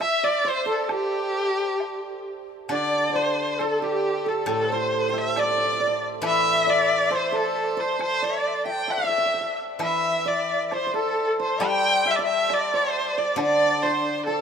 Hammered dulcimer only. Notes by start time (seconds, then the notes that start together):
Already playing: C5 D5
0.00 E5
0.24 D5
0.45 C5
0.66 A4
0.89 G4
2.71 D5
3.09 D5
3.15 C5
3.60 A4
3.82 G4
4.26 A4
4.48 A4
4.72 C5
5.09 G5
5.13 E5
5.37 D5
5.43 D5
5.50 D5
5.58 D5
5.65 D5
5.72 D5
5.80 D5
5.87 D5
6.23 E5
6.67 D5
7.11 C5
7.32 A4
7.77 C5
7.99 C5
8.22 D5
8.65 G5
8.88 E5
8.98 E5
9.04 E5
9.09 E5
9.18 E5
9.34 E5
9.41 E5
9.80 E5
10.26 D5
10.72 C5
10.87 C5
10.94 A4
11.40 C5
11.62 G5
12.06 E5
12.19 E5
12.50 D5
12.74 C5
13.18 D5
13.38 D5
13.83 C5
14.27 A4